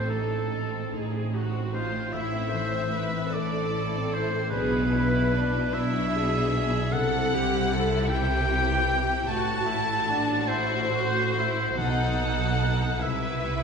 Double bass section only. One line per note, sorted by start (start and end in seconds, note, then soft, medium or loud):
0.00 0.79 A1 soft
0.92 1.99 A1 soft
2.13 3.19 A1 medium
3.32 4.37 A1 medium
4.52 5.61 B1 medium
5.76 6.79 B1 medium
6.93 9.24 C2 medium
9.28 11.73 A1 medium
11.77 12.98 B1 medium
13.01 13.63 C2 medium